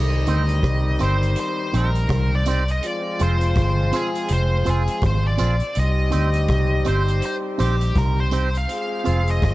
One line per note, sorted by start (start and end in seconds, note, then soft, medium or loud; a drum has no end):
0.00 0.24 C2 loud
0.00 2.42 D#3 medium
0.00 2.42 G3 medium
0.00 2.42 C4 medium
0.00 2.42 D#4 medium
0.00 1.03 D#5 loud
0.26 0.61 D2 medium
0.26 0.43 C4 medium
0.26 0.43 D#4 medium
0.26 0.43 G4 medium
0.26 0.43 C5 medium
0.26 closed hi-hat medium
0.26 tambourine soft
0.49 closed hi-hat medium
0.63 0.97 C2 medium
0.63 kick loud
0.63 cross-stick loud
0.63 closed hi-hat medium
0.99 1.34 G1 medium
0.99 1.16 C4 medium
0.99 1.16 D#4 medium
0.99 1.16 G4 medium
0.99 1.16 C5 medium
0.99 closed hi-hat medium
0.99 tambourine medium
1.03 1.38 C5 medium
1.23 closed hi-hat medium
1.36 1.76 C5 medium
1.36 closed hi-hat medium
1.73 2.07 A#1 medium
1.73 1.89 C4 medium
1.73 1.89 D#4 medium
1.73 1.90 G4 medium
1.73 1.90 C5 medium
1.73 closed hi-hat medium
1.73 tambourine soft
1.77 2.35 A#4 medium
1.95 closed hi-hat soft
2.09 2.79 C2 loud
2.09 kick loud
2.09 cross-stick loud
2.09 closed hi-hat medium
2.35 2.71 D5 medium
2.46 2.62 C4 medium
2.46 2.63 D#4 medium
2.46 2.63 G4 medium
2.46 2.63 C5 loud
2.46 closed hi-hat medium
2.46 tambourine medium
2.68 2.86 D#5 medium
2.68 closed hi-hat medium
2.82 5.35 F3 medium
2.82 5.35 G#3 medium
2.82 5.35 C4 medium
2.82 5.35 F4 loud
2.82 closed hi-hat medium
2.86 3.22 D5 loud
3.19 3.54 F1 medium
3.19 3.36 C4 medium
3.19 3.36 F4 medium
3.19 3.36 G#4 medium
3.19 3.36 C5 medium
3.19 3.97 C5 medium
3.19 closed hi-hat medium
3.19 tambourine soft
3.41 closed hi-hat soft
3.55 3.90 G1 medium
3.55 kick loud
3.55 cross-stick loud
3.55 closed hi-hat medium
3.92 4.09 C4 medium
3.92 4.09 F4 medium
3.92 4.09 G#4 medium
3.92 4.32 G#4 medium
3.92 4.09 C5 medium
3.92 closed hi-hat medium
3.92 tambourine medium
4.15 closed hi-hat medium
4.28 4.64 F1 loud
4.28 closed hi-hat medium
4.33 4.69 C5 loud
4.65 4.87 F1 medium
4.65 4.82 C4 medium
4.65 4.82 F4 medium
4.65 4.82 G#4 medium
4.65 4.82 C5 medium
4.65 closed hi-hat medium
4.65 tambourine soft
4.70 5.02 G#4 medium
4.88 closed hi-hat medium
5.02 5.37 G#1 medium
5.02 kick loud
5.02 cross-stick loud
5.02 closed hi-hat medium
5.06 5.27 C5 medium
5.27 5.79 D5 loud
5.37 5.60 A#1 medium
5.37 5.54 C4 medium
5.37 5.55 F4 loud
5.37 5.55 G#4 medium
5.37 5.55 C5 loud
5.37 closed hi-hat medium
5.37 tambourine medium
5.60 closed hi-hat medium
5.75 6.10 C2 loud
5.75 8.28 G3 medium
5.75 8.28 C4 medium
5.75 8.28 D#4 medium
5.75 8.28 G4 medium
5.75 closed hi-hat medium
5.79 6.91 D#5 loud
6.11 6.47 D2 medium
6.11 6.28 C4 medium
6.11 6.28 D#4 medium
6.11 6.28 G4 loud
6.11 6.28 C5 loud
6.11 closed hi-hat medium
6.11 tambourine soft
6.34 closed hi-hat medium
6.48 6.83 C2 medium
6.48 kick loud
6.48 cross-stick loud
6.48 closed hi-hat medium
6.85 7.20 G1 medium
6.85 7.02 C4 medium
6.85 7.02 D#4 medium
6.85 7.02 G4 medium
6.85 7.02 C5 loud
6.85 7.25 C5 loud
6.85 closed hi-hat medium
6.85 tambourine medium
7.08 closed hi-hat soft
7.22 7.35 C5 loud
7.22 closed hi-hat medium
7.58 7.93 A#1 medium
7.58 7.75 C4 medium
7.58 7.75 D#4 medium
7.58 7.75 G4 medium
7.58 7.97 G4 medium
7.58 7.75 C5 loud
7.58 closed hi-hat medium
7.58 tambourine soft
7.81 closed hi-hat medium
7.96 8.65 C2 loud
7.96 8.20 A#4 medium
7.96 kick loud
7.96 cross-stick loud
7.96 closed hi-hat medium
8.20 8.56 C5 loud
8.31 8.48 C4 medium
8.31 8.48 D#4 medium
8.31 8.48 G4 medium
8.31 8.49 C5 loud
8.31 closed hi-hat medium
8.31 tambourine medium
8.55 9.30 F5 loud
8.55 closed hi-hat soft
8.68 9.54 G#3 medium
8.68 9.54 C4 medium
8.68 9.54 F4 medium
8.68 9.54 G#4 loud
8.68 closed hi-hat medium
9.04 9.40 F1 medium
9.04 9.21 C4 loud
9.04 9.21 F4 medium
9.04 9.22 G#4 medium
9.04 9.22 C5 medium
9.04 closed hi-hat medium
9.04 tambourine soft
9.27 9.44 D#5 loud
9.27 closed hi-hat soft
9.42 9.54 G1 medium
9.42 9.54 D#5 loud
9.42 kick loud
9.42 cross-stick loud
9.42 closed hi-hat medium